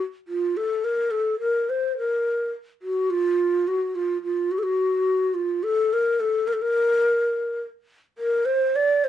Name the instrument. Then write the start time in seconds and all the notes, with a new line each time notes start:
ney
0.28 F4
0.57 A4
0.84 A#4
1.11 A4
1.40 A#4
1.69 C5
1.98 A#4
2.82 F#4
3.10 F4
3.67 F#4
3.95 F4
4.23 F4
4.51 F#4
4.58 A4
4.64 F#4
5.34 F4
5.63 A4
5.93 A#4
6.20 A4
6.47 A#4
6.53 A4
6.62 A#4
8.18 A#4
8.45 C5
8.76 D5
9.04 C5